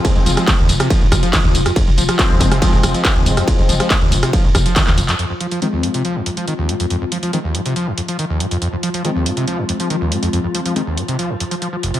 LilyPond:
<<
  \new Staff \with { instrumentName = "Synth drone" } { \time 4/4 \key f \minor \tempo 4 = 140 <f f'>1~ | <f f'>1~ | <f f'>1 | <f f'>1~ |
<f f'>1~ | <f f'>1~ | <f f'>1 | }
  \new Staff \with { instrumentName = "Supersaw synth" } { \clef bass \time 4/4 \key f \minor <f aes c'>4 <f aes c'>8 r2 r8 | r4 <f aes c'>2.~ | <f aes c'>4 <f aes c'>8 r2 r8 | r4 <f aes c'>2.~ |
<f aes c'>4 <f aes c'>8 r2 r8 | r4 <f aes c'>2.~ | <f aes c'>4 <f aes c'>8 r2 r8 | }
  \new Staff \with { instrumentName = "Acid bass" } { \clef bass \time 4/4 \key f \minor f,16 f,16 f16 f16 ees16 ees,16 aes,16 c16 f16 f,16 f,16 f16 ees16 ees,16 aes,16 f,16 | f,16 f,16 f16 f16 ees16 ees,16 aes,16 c16 f16 f,16 f,16 f16 ees16 ees,16 aes,16 f,16 | f,16 f,16 f16 f16 ees16 ees,16 aes,16 c16 f16 f,16 f,16 f16 ees16 ees,16 aes,16 f,16 | f,16 f,16 f16 f16 ees16 ees,16 aes,16 c16 f16 f,16 f,16 f16 ees16 ees,16 aes,16 f,16 |
f,16 f,16 f16 f16 ees16 ees,16 aes,16 c16 f16 f,16 f,16 f16 ees16 ees,16 aes,16 f,16 | f,16 f,16 f16 f16 ees16 ees,16 aes,16 c16 f16 f,16 f,16 f16 ees16 ees,16 aes,16 f,16 | f,16 f,16 f16 f16 ees16 ees,16 aes,16 c16 f16 f,16 f,16 f16 f16 f16 f,,16 c16 | }
  \new Staff \with { instrumentName = "808-style bass" } { \clef bass \time 4/4 \key f \minor r16 f,,16 f,,16 r8 f,,16 f,,16 r8 f,,16 f,,16 r8 f,,16 f,,16 r16 | r16 f,,16 f,,16 r8 f,,16 f,,16 r8 f,,16 f,,16 r8 f,,16 f,,16 r16 | r16 f,,16 f,,16 r8 f,,16 f,,16 r8 f,,16 f,,16 r8 f,,16 f,,16 r16 | r1 |
r1 | r1 | r1 | }
  \new DrumStaff \with { instrumentName = "Drums" } \drummode { \time 4/4 <hh bd cymr tamb>16 tamb16 <hho tamb>16 <hh ss tamb>16 <hc hh bd cymr tamb>16 tamb16 <hho tamb>16 <hh ss tamb>16 <hh bd cymr tamb>16 tamb16 <hho bd ss tamb>16 <hh tamb>16 <hc hh bd cymr tamb>16 tamb16 <hho tamb>16 <hh ss tamb>16 | <hh bd cymr tamb>16 tamb16 <hho tamb>16 <hh ss tamb>16 <hc hh bd cymr tamb>16 tamb16 <hho bd tamb>16 <hh ss tamb>16 <hh bd cymr tamb>16 tamb16 <hho ss tamb>16 <hh tamb>16 <hc hh bd cymr tamb>16 tamb16 <hho tamb>16 <hh ss tamb>16 | <hh bd cymr tamb>16 tamb16 <hho tamb>16 <hh ss tamb>16 <hc hh bd cymr tamb>16 tamb16 <hho tamb>16 <hh ss tamb>16 <hh bd cymr tamb>16 tamb16 <hho bd ss tamb>16 <hh tamb>16 <hc hh bd cymr tamb>16 <hc tamb>16 <hho tamb>16 <hc hh tamb>16 | hh8 hh16 hh16 hh8 hh16 hh16 hh8 hh16 hh16 hh8 hh16 hh16 |
hh8 hh16 hh16 hh8 hh16 hh16 hh8 hh16 hh16 hh8 hh16 hh16 | hh8 hh16 hh16 hh8 hh16 hh16 hh8 hh16 hh16 hh8 hh16 hh16 | hh8 hh16 hh16 hh8 hh16 hh16 hh8 hh16 hh16 hh8 hh16 hh16 | }
>>